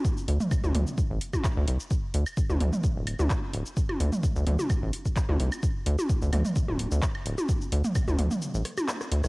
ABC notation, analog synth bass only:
X:1
M:4/4
L:1/16
Q:"Swing 16ths" 1/4=129
K:Cmix
V:1 name="Analog synth bass" clef=bass
z2 D,, z2 D,, D,, z2 A,,, z3 D,, C,, z | z2 D,, z2 D,, D,, z2 D,,,2 D,, z2 D,,, z | z2 D,, z2 D,, D,, z2 A,,, z3 D,, C,, z | z2 D,, z2 D,, D,, z2 D,,,2 D,, z2 D,,, z |
z2 D,, z2 D,, D,, z2 A,,, z4 D,, C,, |]